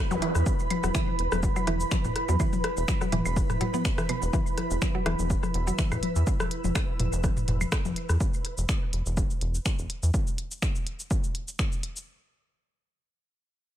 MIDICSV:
0, 0, Header, 1, 7, 480
1, 0, Start_track
1, 0, Tempo, 483871
1, 459, Time_signature, 4, 2, 24, 8
1, 13654, End_track
2, 0, Start_track
2, 0, Title_t, "Ambient pad"
2, 0, Program_c, 0, 92
2, 0, Note_on_c, 0, 64, 90
2, 0, Note_on_c, 0, 71, 84
2, 0, Note_on_c, 0, 83, 91
2, 5098, Note_off_c, 0, 83, 0
2, 6219, Note_off_c, 0, 71, 0
2, 6220, Note_off_c, 0, 64, 0
2, 13654, End_track
3, 0, Start_track
3, 0, Title_t, "Synth texture"
3, 0, Program_c, 1, 99
3, 0, Note_on_c, 1, 71, 86
3, 8150, Note_off_c, 1, 71, 0
3, 13654, End_track
4, 0, Start_track
4, 0, Title_t, "Synth arpeggio sound"
4, 0, Program_c, 2, 84
4, 109, Note_on_c, 2, 54, 79
4, 179, Note_off_c, 2, 54, 0
4, 219, Note_on_c, 2, 52, 101
4, 301, Note_off_c, 2, 52, 0
4, 829, Note_on_c, 2, 54, 81
4, 899, Note_off_c, 2, 54, 0
4, 940, Note_on_c, 2, 52, 101
4, 1021, Note_off_c, 2, 52, 0
4, 1549, Note_on_c, 2, 54, 82
4, 1619, Note_off_c, 2, 54, 0
4, 1659, Note_on_c, 2, 52, 107
4, 1741, Note_off_c, 2, 52, 0
4, 2268, Note_on_c, 2, 54, 80
4, 2338, Note_off_c, 2, 54, 0
4, 2379, Note_on_c, 2, 52, 100
4, 2461, Note_off_c, 2, 52, 0
4, 2989, Note_on_c, 2, 54, 81
4, 3059, Note_off_c, 2, 54, 0
4, 3099, Note_on_c, 2, 52, 105
4, 3181, Note_off_c, 2, 52, 0
4, 3579, Note_on_c, 2, 54, 82
4, 3612, Note_off_c, 2, 54, 0
4, 3708, Note_on_c, 2, 59, 77
4, 3755, Note_off_c, 2, 59, 0
4, 3949, Note_on_c, 2, 52, 78
4, 4019, Note_off_c, 2, 52, 0
4, 4060, Note_on_c, 2, 47, 78
4, 4092, Note_off_c, 2, 47, 0
4, 4299, Note_on_c, 2, 52, 101
4, 4381, Note_off_c, 2, 52, 0
4, 4909, Note_on_c, 2, 54, 79
4, 4979, Note_off_c, 2, 54, 0
4, 5019, Note_on_c, 2, 52, 109
4, 5101, Note_off_c, 2, 52, 0
4, 5628, Note_on_c, 2, 54, 78
4, 5698, Note_off_c, 2, 54, 0
4, 5739, Note_on_c, 2, 52, 101
4, 5821, Note_off_c, 2, 52, 0
4, 13654, End_track
5, 0, Start_track
5, 0, Title_t, "Analog synth bass"
5, 0, Program_c, 3, 38
5, 108, Note_on_c, 3, 28, 100
5, 183, Note_off_c, 3, 28, 0
5, 348, Note_on_c, 3, 40, 85
5, 424, Note_off_c, 3, 40, 0
5, 828, Note_on_c, 3, 28, 94
5, 903, Note_off_c, 3, 28, 0
5, 1179, Note_on_c, 3, 28, 80
5, 1267, Note_off_c, 3, 28, 0
5, 1309, Note_on_c, 3, 28, 104
5, 1466, Note_off_c, 3, 28, 0
5, 1659, Note_on_c, 3, 28, 98
5, 1828, Note_off_c, 3, 28, 0
5, 2029, Note_on_c, 3, 28, 103
5, 2104, Note_off_c, 3, 28, 0
5, 2269, Note_on_c, 3, 40, 86
5, 2344, Note_off_c, 3, 40, 0
5, 2749, Note_on_c, 3, 28, 102
5, 2824, Note_off_c, 3, 28, 0
5, 3098, Note_on_c, 3, 28, 79
5, 3187, Note_off_c, 3, 28, 0
5, 3228, Note_on_c, 3, 28, 103
5, 3385, Note_off_c, 3, 28, 0
5, 4188, Note_on_c, 3, 28, 93
5, 4264, Note_off_c, 3, 28, 0
5, 4668, Note_on_c, 3, 28, 100
5, 4743, Note_off_c, 3, 28, 0
5, 5020, Note_on_c, 3, 28, 82
5, 5107, Note_off_c, 3, 28, 0
5, 5149, Note_on_c, 3, 28, 101
5, 5306, Note_off_c, 3, 28, 0
5, 5498, Note_on_c, 3, 28, 102
5, 5668, Note_off_c, 3, 28, 0
5, 5869, Note_on_c, 3, 28, 104
5, 5944, Note_off_c, 3, 28, 0
5, 6109, Note_on_c, 3, 40, 88
5, 6184, Note_off_c, 3, 40, 0
5, 6589, Note_on_c, 3, 28, 94
5, 6664, Note_off_c, 3, 28, 0
5, 6939, Note_on_c, 3, 28, 79
5, 7027, Note_off_c, 3, 28, 0
5, 7069, Note_on_c, 3, 28, 104
5, 7225, Note_off_c, 3, 28, 0
5, 7419, Note_on_c, 3, 28, 105
5, 7588, Note_off_c, 3, 28, 0
5, 7788, Note_on_c, 3, 28, 106
5, 7864, Note_off_c, 3, 28, 0
5, 8028, Note_on_c, 3, 40, 91
5, 8103, Note_off_c, 3, 40, 0
5, 8508, Note_on_c, 3, 28, 100
5, 8584, Note_off_c, 3, 28, 0
5, 8858, Note_on_c, 3, 28, 80
5, 8947, Note_off_c, 3, 28, 0
5, 8988, Note_on_c, 3, 28, 107
5, 9145, Note_off_c, 3, 28, 0
5, 9339, Note_on_c, 3, 28, 100
5, 9508, Note_off_c, 3, 28, 0
5, 9707, Note_on_c, 3, 28, 106
5, 9783, Note_off_c, 3, 28, 0
5, 9947, Note_on_c, 3, 40, 85
5, 10023, Note_off_c, 3, 40, 0
5, 13654, End_track
6, 0, Start_track
6, 0, Title_t, "Zap"
6, 0, Program_c, 4, 103
6, 109, Note_on_c, 4, 60, 62
6, 219, Note_off_c, 4, 60, 0
6, 13654, End_track
7, 0, Start_track
7, 0, Title_t, "Drums"
7, 109, Note_on_c, 9, 48, 79
7, 109, Note_on_c, 9, 69, 29
7, 208, Note_off_c, 9, 48, 0
7, 208, Note_off_c, 9, 69, 0
7, 219, Note_on_c, 9, 42, 102
7, 318, Note_off_c, 9, 42, 0
7, 349, Note_on_c, 9, 69, 44
7, 350, Note_on_c, 9, 37, 42
7, 448, Note_off_c, 9, 69, 0
7, 449, Note_off_c, 9, 37, 0
7, 459, Note_on_c, 9, 36, 127
7, 459, Note_on_c, 9, 69, 54
7, 461, Note_on_c, 9, 48, 45
7, 558, Note_off_c, 9, 36, 0
7, 558, Note_off_c, 9, 69, 0
7, 560, Note_off_c, 9, 48, 0
7, 589, Note_on_c, 9, 69, 28
7, 688, Note_off_c, 9, 69, 0
7, 699, Note_on_c, 9, 42, 97
7, 701, Note_on_c, 9, 48, 84
7, 701, Note_on_c, 9, 76, 65
7, 798, Note_off_c, 9, 42, 0
7, 800, Note_off_c, 9, 48, 0
7, 800, Note_off_c, 9, 76, 0
7, 829, Note_on_c, 9, 69, 43
7, 831, Note_on_c, 9, 37, 41
7, 928, Note_off_c, 9, 69, 0
7, 930, Note_off_c, 9, 37, 0
7, 939, Note_on_c, 9, 26, 92
7, 939, Note_on_c, 9, 36, 110
7, 939, Note_on_c, 9, 69, 51
7, 1038, Note_off_c, 9, 26, 0
7, 1038, Note_off_c, 9, 36, 0
7, 1038, Note_off_c, 9, 69, 0
7, 1070, Note_on_c, 9, 48, 46
7, 1169, Note_off_c, 9, 48, 0
7, 1179, Note_on_c, 9, 42, 98
7, 1278, Note_off_c, 9, 42, 0
7, 1308, Note_on_c, 9, 69, 41
7, 1311, Note_on_c, 9, 37, 80
7, 1311, Note_on_c, 9, 48, 85
7, 1408, Note_off_c, 9, 69, 0
7, 1410, Note_off_c, 9, 37, 0
7, 1410, Note_off_c, 9, 48, 0
7, 1419, Note_on_c, 9, 36, 119
7, 1419, Note_on_c, 9, 69, 54
7, 1518, Note_off_c, 9, 36, 0
7, 1518, Note_off_c, 9, 69, 0
7, 1549, Note_on_c, 9, 69, 29
7, 1551, Note_on_c, 9, 76, 62
7, 1648, Note_off_c, 9, 69, 0
7, 1650, Note_off_c, 9, 76, 0
7, 1659, Note_on_c, 9, 42, 97
7, 1662, Note_on_c, 9, 37, 37
7, 1662, Note_on_c, 9, 48, 46
7, 1758, Note_off_c, 9, 42, 0
7, 1761, Note_off_c, 9, 37, 0
7, 1761, Note_off_c, 9, 48, 0
7, 1788, Note_on_c, 9, 69, 45
7, 1887, Note_off_c, 9, 69, 0
7, 1899, Note_on_c, 9, 26, 91
7, 1899, Note_on_c, 9, 36, 117
7, 1899, Note_on_c, 9, 69, 52
7, 1901, Note_on_c, 9, 48, 82
7, 1998, Note_off_c, 9, 26, 0
7, 1998, Note_off_c, 9, 36, 0
7, 1998, Note_off_c, 9, 69, 0
7, 2000, Note_off_c, 9, 48, 0
7, 2029, Note_on_c, 9, 69, 29
7, 2030, Note_on_c, 9, 45, 75
7, 2128, Note_off_c, 9, 69, 0
7, 2129, Note_off_c, 9, 45, 0
7, 2139, Note_on_c, 9, 42, 102
7, 2141, Note_on_c, 9, 37, 40
7, 2239, Note_off_c, 9, 42, 0
7, 2241, Note_off_c, 9, 37, 0
7, 2269, Note_on_c, 9, 69, 43
7, 2271, Note_on_c, 9, 48, 49
7, 2368, Note_off_c, 9, 69, 0
7, 2370, Note_off_c, 9, 48, 0
7, 2379, Note_on_c, 9, 36, 125
7, 2379, Note_on_c, 9, 69, 51
7, 2380, Note_on_c, 9, 76, 62
7, 2478, Note_off_c, 9, 36, 0
7, 2478, Note_off_c, 9, 69, 0
7, 2479, Note_off_c, 9, 76, 0
7, 2509, Note_on_c, 9, 48, 86
7, 2509, Note_on_c, 9, 69, 29
7, 2608, Note_off_c, 9, 48, 0
7, 2608, Note_off_c, 9, 69, 0
7, 2619, Note_on_c, 9, 42, 102
7, 2620, Note_on_c, 9, 37, 78
7, 2718, Note_off_c, 9, 42, 0
7, 2719, Note_off_c, 9, 37, 0
7, 2749, Note_on_c, 9, 69, 42
7, 2848, Note_off_c, 9, 69, 0
7, 2859, Note_on_c, 9, 26, 94
7, 2859, Note_on_c, 9, 36, 112
7, 2859, Note_on_c, 9, 69, 49
7, 2860, Note_on_c, 9, 48, 49
7, 2958, Note_off_c, 9, 26, 0
7, 2958, Note_off_c, 9, 36, 0
7, 2958, Note_off_c, 9, 69, 0
7, 2960, Note_off_c, 9, 48, 0
7, 2988, Note_on_c, 9, 69, 30
7, 2989, Note_on_c, 9, 37, 37
7, 3087, Note_off_c, 9, 69, 0
7, 3088, Note_off_c, 9, 37, 0
7, 3099, Note_on_c, 9, 42, 103
7, 3100, Note_on_c, 9, 45, 93
7, 3100, Note_on_c, 9, 48, 80
7, 3198, Note_off_c, 9, 42, 0
7, 3199, Note_off_c, 9, 45, 0
7, 3199, Note_off_c, 9, 48, 0
7, 3229, Note_on_c, 9, 69, 41
7, 3229, Note_on_c, 9, 76, 64
7, 3328, Note_off_c, 9, 69, 0
7, 3328, Note_off_c, 9, 76, 0
7, 3338, Note_on_c, 9, 36, 125
7, 3339, Note_on_c, 9, 69, 52
7, 3438, Note_off_c, 9, 36, 0
7, 3438, Note_off_c, 9, 69, 0
7, 3469, Note_on_c, 9, 69, 28
7, 3470, Note_on_c, 9, 37, 38
7, 3470, Note_on_c, 9, 45, 82
7, 3470, Note_on_c, 9, 48, 46
7, 3568, Note_off_c, 9, 69, 0
7, 3569, Note_off_c, 9, 37, 0
7, 3569, Note_off_c, 9, 45, 0
7, 3569, Note_off_c, 9, 48, 0
7, 3580, Note_on_c, 9, 42, 99
7, 3580, Note_on_c, 9, 45, 82
7, 3679, Note_off_c, 9, 42, 0
7, 3679, Note_off_c, 9, 45, 0
7, 3709, Note_on_c, 9, 48, 81
7, 3709, Note_on_c, 9, 69, 43
7, 3808, Note_off_c, 9, 48, 0
7, 3808, Note_off_c, 9, 69, 0
7, 3819, Note_on_c, 9, 26, 93
7, 3819, Note_on_c, 9, 36, 109
7, 3819, Note_on_c, 9, 69, 51
7, 3918, Note_off_c, 9, 36, 0
7, 3919, Note_off_c, 9, 26, 0
7, 3919, Note_off_c, 9, 69, 0
7, 3949, Note_on_c, 9, 69, 28
7, 3950, Note_on_c, 9, 37, 71
7, 4048, Note_off_c, 9, 69, 0
7, 4049, Note_off_c, 9, 37, 0
7, 4059, Note_on_c, 9, 42, 102
7, 4060, Note_on_c, 9, 48, 48
7, 4060, Note_on_c, 9, 76, 65
7, 4158, Note_off_c, 9, 42, 0
7, 4159, Note_off_c, 9, 48, 0
7, 4159, Note_off_c, 9, 76, 0
7, 4189, Note_on_c, 9, 69, 42
7, 4288, Note_off_c, 9, 69, 0
7, 4299, Note_on_c, 9, 36, 124
7, 4299, Note_on_c, 9, 69, 53
7, 4398, Note_off_c, 9, 36, 0
7, 4398, Note_off_c, 9, 69, 0
7, 4429, Note_on_c, 9, 69, 28
7, 4528, Note_off_c, 9, 69, 0
7, 4539, Note_on_c, 9, 42, 97
7, 4540, Note_on_c, 9, 37, 39
7, 4540, Note_on_c, 9, 48, 46
7, 4639, Note_off_c, 9, 37, 0
7, 4639, Note_off_c, 9, 42, 0
7, 4639, Note_off_c, 9, 48, 0
7, 4669, Note_on_c, 9, 69, 39
7, 4768, Note_off_c, 9, 69, 0
7, 4779, Note_on_c, 9, 36, 108
7, 4780, Note_on_c, 9, 26, 89
7, 4780, Note_on_c, 9, 48, 80
7, 4780, Note_on_c, 9, 69, 49
7, 4878, Note_off_c, 9, 36, 0
7, 4879, Note_off_c, 9, 26, 0
7, 4879, Note_off_c, 9, 48, 0
7, 4879, Note_off_c, 9, 69, 0
7, 5019, Note_on_c, 9, 37, 77
7, 5019, Note_on_c, 9, 42, 98
7, 5019, Note_on_c, 9, 76, 67
7, 5119, Note_off_c, 9, 37, 0
7, 5119, Note_off_c, 9, 42, 0
7, 5119, Note_off_c, 9, 76, 0
7, 5149, Note_on_c, 9, 48, 46
7, 5149, Note_on_c, 9, 69, 41
7, 5249, Note_off_c, 9, 48, 0
7, 5249, Note_off_c, 9, 69, 0
7, 5259, Note_on_c, 9, 36, 117
7, 5259, Note_on_c, 9, 69, 55
7, 5358, Note_off_c, 9, 36, 0
7, 5358, Note_off_c, 9, 69, 0
7, 5389, Note_on_c, 9, 69, 29
7, 5390, Note_on_c, 9, 37, 38
7, 5390, Note_on_c, 9, 48, 76
7, 5488, Note_off_c, 9, 69, 0
7, 5489, Note_off_c, 9, 37, 0
7, 5489, Note_off_c, 9, 48, 0
7, 5499, Note_on_c, 9, 42, 92
7, 5598, Note_off_c, 9, 42, 0
7, 5629, Note_on_c, 9, 69, 44
7, 5728, Note_off_c, 9, 69, 0
7, 5739, Note_on_c, 9, 26, 89
7, 5739, Note_on_c, 9, 36, 105
7, 5739, Note_on_c, 9, 69, 52
7, 5740, Note_on_c, 9, 48, 43
7, 5838, Note_off_c, 9, 36, 0
7, 5839, Note_off_c, 9, 26, 0
7, 5839, Note_off_c, 9, 69, 0
7, 5840, Note_off_c, 9, 48, 0
7, 5869, Note_on_c, 9, 69, 27
7, 5870, Note_on_c, 9, 37, 38
7, 5870, Note_on_c, 9, 45, 72
7, 5870, Note_on_c, 9, 76, 65
7, 5969, Note_off_c, 9, 37, 0
7, 5969, Note_off_c, 9, 45, 0
7, 5969, Note_off_c, 9, 69, 0
7, 5969, Note_off_c, 9, 76, 0
7, 5979, Note_on_c, 9, 42, 98
7, 5980, Note_on_c, 9, 48, 80
7, 6078, Note_off_c, 9, 42, 0
7, 6080, Note_off_c, 9, 48, 0
7, 6109, Note_on_c, 9, 69, 41
7, 6208, Note_off_c, 9, 69, 0
7, 6219, Note_on_c, 9, 36, 113
7, 6219, Note_on_c, 9, 69, 54
7, 6318, Note_off_c, 9, 36, 0
7, 6318, Note_off_c, 9, 69, 0
7, 6349, Note_on_c, 9, 69, 28
7, 6350, Note_on_c, 9, 37, 82
7, 6350, Note_on_c, 9, 48, 45
7, 6448, Note_off_c, 9, 69, 0
7, 6450, Note_off_c, 9, 37, 0
7, 6450, Note_off_c, 9, 48, 0
7, 6459, Note_on_c, 9, 42, 94
7, 6559, Note_off_c, 9, 42, 0
7, 6590, Note_on_c, 9, 48, 78
7, 6590, Note_on_c, 9, 69, 41
7, 6689, Note_off_c, 9, 48, 0
7, 6689, Note_off_c, 9, 69, 0
7, 6699, Note_on_c, 9, 36, 105
7, 6700, Note_on_c, 9, 26, 87
7, 6700, Note_on_c, 9, 37, 41
7, 6700, Note_on_c, 9, 69, 52
7, 6700, Note_on_c, 9, 76, 70
7, 6798, Note_off_c, 9, 36, 0
7, 6799, Note_off_c, 9, 26, 0
7, 6799, Note_off_c, 9, 37, 0
7, 6799, Note_off_c, 9, 69, 0
7, 6799, Note_off_c, 9, 76, 0
7, 6939, Note_on_c, 9, 42, 94
7, 6940, Note_on_c, 9, 45, 87
7, 6940, Note_on_c, 9, 48, 42
7, 7039, Note_off_c, 9, 42, 0
7, 7039, Note_off_c, 9, 45, 0
7, 7039, Note_off_c, 9, 48, 0
7, 7069, Note_on_c, 9, 69, 40
7, 7169, Note_off_c, 9, 69, 0
7, 7179, Note_on_c, 9, 36, 119
7, 7179, Note_on_c, 9, 69, 53
7, 7180, Note_on_c, 9, 37, 41
7, 7180, Note_on_c, 9, 48, 75
7, 7278, Note_off_c, 9, 36, 0
7, 7279, Note_off_c, 9, 37, 0
7, 7279, Note_off_c, 9, 48, 0
7, 7279, Note_off_c, 9, 69, 0
7, 7309, Note_on_c, 9, 69, 31
7, 7310, Note_on_c, 9, 45, 74
7, 7409, Note_off_c, 9, 45, 0
7, 7409, Note_off_c, 9, 69, 0
7, 7419, Note_on_c, 9, 42, 93
7, 7420, Note_on_c, 9, 45, 80
7, 7519, Note_off_c, 9, 42, 0
7, 7520, Note_off_c, 9, 45, 0
7, 7549, Note_on_c, 9, 69, 44
7, 7550, Note_on_c, 9, 48, 44
7, 7550, Note_on_c, 9, 76, 71
7, 7648, Note_off_c, 9, 69, 0
7, 7649, Note_off_c, 9, 48, 0
7, 7649, Note_off_c, 9, 76, 0
7, 7659, Note_on_c, 9, 26, 92
7, 7659, Note_on_c, 9, 36, 104
7, 7659, Note_on_c, 9, 69, 52
7, 7660, Note_on_c, 9, 37, 79
7, 7758, Note_off_c, 9, 36, 0
7, 7759, Note_off_c, 9, 26, 0
7, 7759, Note_off_c, 9, 69, 0
7, 7760, Note_off_c, 9, 37, 0
7, 7789, Note_on_c, 9, 69, 28
7, 7791, Note_on_c, 9, 48, 74
7, 7888, Note_off_c, 9, 69, 0
7, 7890, Note_off_c, 9, 48, 0
7, 7899, Note_on_c, 9, 42, 94
7, 7998, Note_off_c, 9, 42, 0
7, 8029, Note_on_c, 9, 69, 42
7, 8030, Note_on_c, 9, 37, 41
7, 8129, Note_off_c, 9, 37, 0
7, 8129, Note_off_c, 9, 69, 0
7, 8139, Note_on_c, 9, 36, 114
7, 8140, Note_on_c, 9, 69, 56
7, 8238, Note_off_c, 9, 36, 0
7, 8239, Note_off_c, 9, 69, 0
7, 8269, Note_on_c, 9, 69, 29
7, 8368, Note_off_c, 9, 69, 0
7, 8379, Note_on_c, 9, 42, 88
7, 8478, Note_off_c, 9, 42, 0
7, 8508, Note_on_c, 9, 69, 45
7, 8608, Note_off_c, 9, 69, 0
7, 8619, Note_on_c, 9, 26, 96
7, 8619, Note_on_c, 9, 36, 108
7, 8619, Note_on_c, 9, 69, 56
7, 8718, Note_off_c, 9, 26, 0
7, 8718, Note_off_c, 9, 36, 0
7, 8718, Note_off_c, 9, 69, 0
7, 8859, Note_on_c, 9, 42, 96
7, 8958, Note_off_c, 9, 42, 0
7, 8989, Note_on_c, 9, 69, 42
7, 9088, Note_off_c, 9, 69, 0
7, 9099, Note_on_c, 9, 36, 113
7, 9099, Note_on_c, 9, 69, 57
7, 9198, Note_off_c, 9, 36, 0
7, 9198, Note_off_c, 9, 69, 0
7, 9229, Note_on_c, 9, 69, 31
7, 9328, Note_off_c, 9, 69, 0
7, 9339, Note_on_c, 9, 42, 90
7, 9438, Note_off_c, 9, 42, 0
7, 9469, Note_on_c, 9, 69, 45
7, 9568, Note_off_c, 9, 69, 0
7, 9579, Note_on_c, 9, 26, 90
7, 9579, Note_on_c, 9, 36, 100
7, 9579, Note_on_c, 9, 69, 55
7, 9678, Note_off_c, 9, 36, 0
7, 9679, Note_off_c, 9, 26, 0
7, 9679, Note_off_c, 9, 69, 0
7, 9709, Note_on_c, 9, 69, 30
7, 9808, Note_off_c, 9, 69, 0
7, 9819, Note_on_c, 9, 42, 93
7, 9918, Note_off_c, 9, 42, 0
7, 9949, Note_on_c, 9, 69, 44
7, 10048, Note_off_c, 9, 69, 0
7, 10058, Note_on_c, 9, 36, 114
7, 10059, Note_on_c, 9, 69, 57
7, 10157, Note_off_c, 9, 36, 0
7, 10158, Note_off_c, 9, 69, 0
7, 10189, Note_on_c, 9, 69, 31
7, 10288, Note_off_c, 9, 69, 0
7, 10299, Note_on_c, 9, 42, 90
7, 10398, Note_off_c, 9, 42, 0
7, 10429, Note_on_c, 9, 69, 45
7, 10528, Note_off_c, 9, 69, 0
7, 10538, Note_on_c, 9, 36, 105
7, 10539, Note_on_c, 9, 26, 95
7, 10539, Note_on_c, 9, 69, 56
7, 10638, Note_off_c, 9, 26, 0
7, 10638, Note_off_c, 9, 36, 0
7, 10638, Note_off_c, 9, 69, 0
7, 10669, Note_on_c, 9, 69, 33
7, 10768, Note_off_c, 9, 69, 0
7, 10779, Note_on_c, 9, 42, 95
7, 10878, Note_off_c, 9, 42, 0
7, 10909, Note_on_c, 9, 69, 45
7, 11008, Note_off_c, 9, 69, 0
7, 11018, Note_on_c, 9, 36, 116
7, 11018, Note_on_c, 9, 69, 59
7, 11117, Note_off_c, 9, 36, 0
7, 11118, Note_off_c, 9, 69, 0
7, 11148, Note_on_c, 9, 69, 32
7, 11247, Note_off_c, 9, 69, 0
7, 11258, Note_on_c, 9, 42, 88
7, 11357, Note_off_c, 9, 42, 0
7, 11388, Note_on_c, 9, 69, 47
7, 11487, Note_off_c, 9, 69, 0
7, 11498, Note_on_c, 9, 26, 94
7, 11498, Note_on_c, 9, 36, 103
7, 11498, Note_on_c, 9, 69, 56
7, 11597, Note_off_c, 9, 36, 0
7, 11598, Note_off_c, 9, 26, 0
7, 11598, Note_off_c, 9, 69, 0
7, 11628, Note_on_c, 9, 69, 31
7, 11727, Note_off_c, 9, 69, 0
7, 11738, Note_on_c, 9, 42, 93
7, 11838, Note_off_c, 9, 42, 0
7, 11868, Note_on_c, 9, 69, 47
7, 11968, Note_off_c, 9, 69, 0
7, 13654, End_track
0, 0, End_of_file